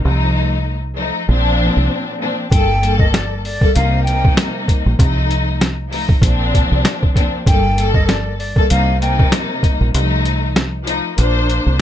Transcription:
0.03 fingered electric bass C2, string section F3 A3 D#4
0.95 string section F3 A3 D#4
1.28 fingered electric bass A#1, string section A#2 F3 C4 D4
1.77 fingered electric bass C2
2.19 string section A#2 F3 C4 D4
2.49 fingered electric bass G1, string section G2 G3 A#3 A4, flute G5, kick, closed hi-hat
2.80 string section G2 G3 A#3 A4, closed hi-hat
2.99 flute D#5, kick
3.12 flute D5, snare, closed hi-hat
3.45 flute D5, open hi-hat
3.61 string section G2 G3 A#3 A4, kick
3.74 fingered electric bass C2, string section C3 G3 A#3 D#4, flute F5, closed hi-hat
4.03 flute G5
4.07 string section C3 G3 A#3 D#4, closed hi-hat
4.25 kick
4.37 snare, closed hi-hat
4.68 kick, closed hi-hat
4.86 fingered electric bass A#1
4.98 fingered electric bass C2, string section F3 A3 D#4, kick, closed hi-hat
5.31 closed hi-hat
5.61 snare, closed hi-hat
5.90 string section F3 A3 D#4, open hi-hat
6.09 kick
6.22 fingered electric bass A#1, string section A#2 F3 C4 D4, kick, closed hi-hat
6.54 kick, closed hi-hat
6.72 fingered electric bass C2
6.85 snare, closed hi-hat
7.03 kick
7.14 string section A#2 F3 C4 D4, kick, closed hi-hat
7.45 fingered electric bass G1, string section G2 G3 A#3 A4, flute G5, kick, closed hi-hat
7.75 string section G2 G3 A#3 A4, closed hi-hat
7.94 flute D#5, kick
8.07 flute D5, snare, closed hi-hat
8.38 flute D5, open hi-hat
8.55 string section G2 G3 A#3 A4, kick
8.69 fingered electric bass C2, string section C3 G3 A#3 D#4, flute F5, closed hi-hat
8.99 string section C3 G3 A#3 D#4, flute G5, closed hi-hat
9.19 kick
9.32 snare, closed hi-hat
9.63 kick, closed hi-hat
9.81 fingered electric bass A#1
9.93 fingered electric bass C2, string section F3 A3 D#4, closed hi-hat
10.25 closed hi-hat
10.56 snare, closed hi-hat
10.85 string section F3 A3 D#4, closed hi-hat
11.16 fingered electric bass A#1, string section A#2 A#3 D4 C5, closed hi-hat
11.50 closed hi-hat
11.66 fingered electric bass C2

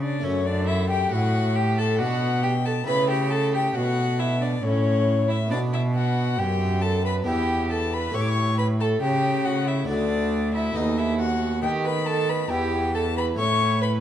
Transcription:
Already playing: harpsichord C#3 D4, cello C#3
0.01 violin D4 D5
0.20 harpsichord A3 C#4, violin C#4 C#5
0.24 cello F#2, harpsichord F#2
0.46 violin D4 D5
0.67 violin E4 E5
0.90 violin G4 G5
1.12 cello A2, harpsichord A2, violin F#4 F#5
1.56 violin G4 G5
1.78 violin A4 A5
1.98 cello B2, harpsichord B2 D4, violin F#4 F#5
2.43 violin G4 G5
2.66 violin A4 A5
2.84 cello C#3, harpsichord A3 C#4 E4, violin B4 B5
2.88 harpsichord C#3
3.10 violin G4 G5
3.31 violin A4 A5
3.53 violin G4 G5
3.75 cello B2, harpsichord B2, violin F#4 F#5
4.19 violin E4 E5
4.41 violin D4 D5
4.63 cello A2, harpsichord A2, violin C#4 C#5
5.28 violin E4 E5
5.47 harpsichord B3 D4, violin D4
5.51 cello B2, harpsichord B2, violin D5
5.73 violin E4 E5
5.94 violin F#4 F#5
6.38 cello F#2, harpsichord F#2, violin G4 G5
6.82 violin A4 A5
7.05 violin B4 B5
7.22 cello E2, harpsichord B3 D4 E4
7.27 harpsichord E2, violin G4 G5
7.71 violin A4 A5
7.94 violin B4 B5
8.10 harpsichord A3 E4 G4
8.15 cello A2, harpsichord A2, violin C#5 C#6
8.21 violin D6
8.29 violin C#6
8.58 violin B4 B5
8.80 violin A4 A5
9.01 cello C#3, harpsichord C#3, violin G4 G5
9.45 violin F#4 F#5
9.67 violin E4 E5
9.85 cello D2, harpsichord A3 D4 F#4, violin D5
9.89 harpsichord D2, violin D4
10.55 violin E4 E5
10.72 cello D#2, harpsichord A3 B3 F#4, violin D#5
10.77 harpsichord D#2, violin D#4
10.98 violin E4 E5
11.19 violin F#4 F#5
11.62 cello D#3, harpsichord D#3, violin G4 G5
11.85 violin B4 B5
12.06 violin A4 A5
12.29 violin B4 B5
12.48 cello E2, harpsichord E2 B3 E4, violin G4 G5
12.94 violin A4 A5
13.16 violin B4 B5
13.35 cello A2, harpsichord A3 C#4 E4, violin C#5
13.39 harpsichord A2, violin C#6
13.81 violin B4 B5

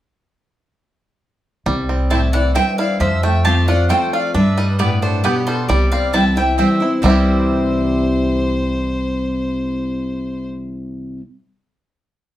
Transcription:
1.66 upright bass C2, steel-string acoustic guitar C3, five-string banjo G3
1.89 five-string banjo C4
2.10 steel-string acoustic guitar A2, mandolin C4 E4 C5 G5 A5, five-string banjo E4, fiddle E5
2.33 five-string banjo E3, fiddle D5, mandolin F#5
2.55 steel-string acoustic guitar G2, mandolin C4 E4 C5 G5, five-string banjo C4, fiddle E5
2.78 five-string banjo E4, fiddle D5, mandolin F5
3.00 upright bass F2, steel-string acoustic guitar F2, five-string banjo F3, fiddle C5, mandolin E5
3.23 five-string banjo A3, fiddle E5, mandolin G5
3.44 steel-string acoustic guitar F3 A3 C4 F4, mandolin C4 F4 C5 A5, five-string banjo G4, fiddle F5
3.68 steel-string acoustic guitar C4 F4, five-string banjo F4, fiddle D5, mandolin F#5
3.89 steel-string acoustic guitar F3 A3 C4 F4, five-string banjo A3, mandolin C4 F4 C5 G5 A5, fiddle C5
4.13 five-string banjo F4, fiddle D5, mandolin F5
4.34 upright bass G2, steel-string acoustic guitar G2, five-string banjo D4, fiddle B4, mandolin E5
4.58 five-string banjo G3, fiddle B4, mandolin D#5
4.79 steel-string acoustic guitar A2, mandolin B3 G4 D5 G5, five-string banjo B3, fiddle B4
5.02 five-string banjo D4, fiddle A4, mandolin C5
5.24 steel-string acoustic guitar B2, mandolin B3 G4 B4 D5 G5, five-string banjo B3, fiddle G4
5.47 five-string banjo G3, fiddle A4, mandolin C5
5.69 upright bass C2, steel-string acoustic guitar C3, five-string banjo G3, fiddle G4, mandolin D5
5.92 five-string banjo C4, fiddle D5, mandolin F5
6.13 steel-string acoustic guitar E3 G3 C4 E4, mandolin C4 E4 C5 G5 A5, five-string banjo E4, fiddle E5
6.36 five-string banjo E3, steel-string acoustic guitar C4 E4, fiddle E5, mandolin G5
6.58 steel-string acoustic guitar E3 G3 C4 E4, mandolin C4 E4 C5 E5 G5, five-string banjo C4, fiddle C5
6.80 steel-string acoustic guitar C4 E4, five-string banjo E4
7.02 upright bass C2, steel-string acoustic guitar C3 E3 G3 C4 E4, five-string banjo G3 C4, mandolin C4 E4 C5 E5 G5, fiddle C5
7.08 five-string banjo E4 G4

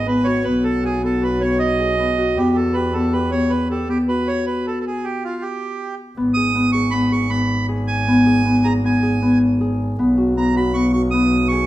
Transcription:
Already playing: double bass G#1, harp C#4 G#4
0.07 harp B3, accordion B4
0.24 harp F#4, accordion C#5
0.44 double bass B1, harp B3, accordion B4
0.64 accordion A4
0.83 harp F#4, accordion G#4
1.03 harp B3, accordion A4
1.22 harp F#4, accordion B4
1.41 harp B3, accordion C#5
1.59 accordion D#5
1.80 harp G#4
1.99 harp B3
2.18 harp F#4
2.36 double bass E2, harp B3, accordion G4
2.56 accordion A4
2.74 harp G4, accordion B4
2.94 harp B3, accordion A4
3.13 harp G4, accordion B4
3.31 harp B3, accordion C#5
3.50 accordion B4
3.71 harp G4, accordion A4
3.89 harp B3, accordion G4
4.08 harp F#4, accordion B4
4.28 accordion C#5
4.46 accordion B4
4.67 accordion A4
4.80 accordion A4
4.87 accordion G#4
5.04 accordion G4
5.24 accordion F4
5.42 accordion G4
6.17 double bass G#1, harp B3
6.34 harp G#4, accordion D#6
6.55 harp B3
6.72 harp G#4, accordion C#6
6.91 harp B3, accordion B5
7.12 harp G#4, accordion C#6
7.30 harp B3, accordion B5
7.69 harp G#4
7.88 accordion G#5
8.08 harp B3
8.26 harp G#4
8.45 harp B3
8.64 harp G#4, accordion A#5
8.84 harp B3, accordion G#5
9.03 harp G#4
9.22 harp B3
9.61 harp G#4
9.99 double bass B1, harp B3
10.17 harp F#4
10.37 harp B3, accordion A#5
10.56 harp F#4, accordion B5
10.74 harp B3, accordion C#6
10.93 harp F#4, accordion C#6
11.11 harp B3, accordion D#6
11.48 harp G#4, accordion C#6

